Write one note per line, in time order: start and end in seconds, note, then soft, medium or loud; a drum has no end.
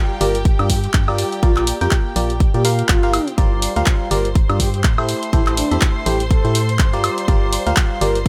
0.00 0.18 G3 medium
0.00 0.18 F4 medium
0.00 0.18 G4 medium
0.00 3.39 G4 medium
0.00 0.18 A#4 medium
0.00 0.18 F5 loud
0.00 3.39 G5 medium
0.21 0.51 G1 medium
0.21 0.37 G3 medium
0.21 0.37 F4 medium
0.21 0.37 G4 medium
0.21 0.37 A#4 medium
0.21 0.37 D5 medium
0.21 open hi-hat loud
0.35 closed hi-hat medium
0.45 kick loud
0.45 closed hi-hat medium
0.59 0.88 G2 loud
0.59 0.74 G3 medium
0.59 0.74 F4 medium
0.59 0.74 G4 medium
0.59 0.74 A#4 medium
0.59 0.74 D5 medium
0.59 closed hi-hat soft
0.59 high woodblock medium
0.70 0.79 G4 medium
0.70 kick medium
0.70 open hi-hat loud
0.84 0.90 G4 medium
0.84 closed hi-hat medium
0.93 1.24 G2 medium
0.93 kick loud
0.93 clap loud
0.93 closed hi-hat medium
1.08 1.40 G3 medium
1.08 1.40 F4 medium
1.08 1.40 G4 medium
1.08 1.40 A#4 medium
1.08 1.40 D5 medium
1.08 high woodblock medium
1.18 open hi-hat loud
1.32 closed hi-hat medium
1.43 1.73 A#1 loud
1.43 1.78 A#3 loud
1.43 1.78 F4 medium
1.43 1.52 F4 medium
1.43 1.78 G4 medium
1.43 1.78 A#4 medium
1.43 1.78 D5 loud
1.43 kick loud
1.43 closed hi-hat medium
1.56 1.63 F4 medium
1.56 clap soft
1.56 closed hi-hat soft
1.56 high woodblock medium
1.67 open hi-hat loud
1.81 1.88 F2 medium
1.81 2.13 A#3 medium
1.81 2.13 F4 medium
1.81 2.13 G4 medium
1.81 1.94 G4 medium
1.81 2.14 A#4 medium
1.81 2.13 G5 loud
1.81 closed hi-hat medium
1.91 kick loud
1.91 clap loud
1.91 closed hi-hat medium
2.16 2.46 A#1 medium
2.16 2.32 A#3 medium
2.16 2.32 F4 medium
2.16 2.32 G4 medium
2.16 2.32 A#4 medium
2.16 2.32 D5 medium
2.16 open hi-hat loud
2.30 closed hi-hat medium
2.40 kick loud
2.40 closed hi-hat medium
2.54 2.83 A#2 loud
2.54 2.63 A#3 medium
2.54 2.63 F4 medium
2.54 2.67 G4 loud
2.54 2.63 G4 medium
2.54 2.63 A#4 medium
2.54 2.63 D5 medium
2.54 closed hi-hat soft
2.65 3.00 A#3 medium
2.65 3.00 F4 medium
2.65 3.00 G4 medium
2.65 3.00 A#4 medium
2.65 3.00 F5 loud
2.65 open hi-hat loud
2.79 closed hi-hat medium
2.89 3.19 G1 loud
2.89 3.28 F4 medium
2.89 kick loud
2.89 clap loud
2.89 closed hi-hat medium
3.03 3.18 A#3 loud
3.03 3.18 F4 medium
3.03 3.18 G4 medium
3.03 3.18 A#4 medium
3.03 3.18 F5 loud
3.03 closed hi-hat soft
3.14 open hi-hat loud
3.14 high woodblock medium
3.28 closed hi-hat medium
3.38 3.68 G1 loud
3.38 3.73 G3 loud
3.38 3.73 F4 medium
3.38 3.73 G4 medium
3.38 3.73 A#4 medium
3.38 8.28 C5 medium
3.38 3.73 D5 loud
3.38 8.28 C6 medium
3.38 kick loud
3.38 closed hi-hat medium
3.62 open hi-hat loud
3.76 3.83 D2 medium
3.76 4.09 G3 medium
3.76 4.09 F4 medium
3.76 4.09 G4 medium
3.76 4.09 A#4 medium
3.76 4.09 F5 loud
3.76 closed hi-hat medium
3.86 kick loud
3.86 clap loud
3.86 closed hi-hat medium
4.11 4.41 G1 medium
4.11 4.27 G3 medium
4.11 4.27 F4 medium
4.11 4.27 G4 medium
4.11 4.27 A#4 medium
4.11 4.27 A#4 loud
4.11 4.27 D5 medium
4.11 open hi-hat medium
4.25 closed hi-hat medium
4.35 kick loud
4.35 closed hi-hat medium
4.50 4.86 G2 loud
4.50 4.65 G3 medium
4.50 4.65 F4 medium
4.50 4.65 G4 medium
4.50 4.65 A#4 medium
4.50 4.65 D5 medium
4.50 closed hi-hat soft
4.50 high woodblock medium
4.60 4.69 G4 medium
4.60 kick medium
4.60 open hi-hat loud
4.74 4.81 G4 medium
4.74 closed hi-hat medium
4.84 5.14 A2 medium
4.84 kick loud
4.84 clap loud
4.84 closed hi-hat medium
4.98 5.31 A3 medium
4.98 5.31 E4 medium
4.98 5.31 G4 medium
4.98 5.31 A4 medium
4.98 5.31 C5 medium
4.98 high woodblock medium
5.09 open hi-hat medium
5.23 closed hi-hat medium
5.33 5.63 A1 loud
5.33 5.68 A3 loud
5.33 5.68 E4 medium
5.33 5.42 E4 medium
5.33 5.68 G4 medium
5.33 5.68 A4 medium
5.33 5.68 C5 loud
5.33 kick loud
5.33 closed hi-hat medium
5.47 5.54 E4 medium
5.47 clap soft
5.47 closed hi-hat soft
5.47 high woodblock medium
5.57 5.73 D4 medium
5.57 open hi-hat loud
5.71 5.78 E2 medium
5.71 6.04 A3 medium
5.71 6.04 E4 medium
5.71 6.04 G4 medium
5.71 6.04 A4 medium
5.71 6.04 E5 loud
5.71 closed hi-hat medium
5.81 kick loud
5.81 clap loud
5.81 closed hi-hat medium
6.06 6.36 A1 medium
6.06 6.22 A3 medium
6.06 6.22 E4 medium
6.06 6.22 G4 medium
6.06 6.22 A4 medium
6.06 6.22 C5 medium
6.06 open hi-hat medium
6.20 closed hi-hat medium
6.31 6.69 A4 medium
6.31 kick loud
6.31 closed hi-hat medium
6.45 6.81 A2 loud
6.45 6.60 A3 medium
6.45 6.60 E4 medium
6.45 6.60 G4 medium
6.45 6.60 A4 medium
6.45 6.60 C5 medium
6.45 closed hi-hat soft
6.55 open hi-hat loud
6.69 closed hi-hat medium
6.79 7.09 G2 medium
6.79 kick loud
6.79 clap loud
6.79 closed hi-hat medium
6.93 7.26 G3 medium
6.93 7.26 F4 medium
6.93 7.26 G4 medium
6.93 7.26 A#4 medium
6.93 7.26 D5 medium
6.93 closed hi-hat soft
7.04 open hi-hat medium
7.04 high woodblock medium
7.18 closed hi-hat medium
7.28 7.58 G1 loud
7.28 7.63 G3 loud
7.28 7.63 F4 medium
7.28 7.63 G4 medium
7.28 7.63 A#4 medium
7.28 7.63 D5 loud
7.28 kick loud
7.28 closed hi-hat medium
7.53 open hi-hat loud
7.67 7.73 D2 medium
7.67 7.99 G3 medium
7.67 7.99 F4 medium
7.67 7.99 G4 medium
7.67 7.99 A#4 medium
7.67 7.99 F5 loud
7.67 closed hi-hat medium
7.76 kick loud
7.76 clap loud
7.76 closed hi-hat medium
8.01 8.28 G1 medium
8.01 8.18 G3 medium
8.01 8.18 F4 medium
8.01 8.18 G4 medium
8.01 8.17 A#4 medium
8.01 8.18 A#4 medium
8.01 8.18 D5 medium
8.01 open hi-hat medium
8.15 closed hi-hat medium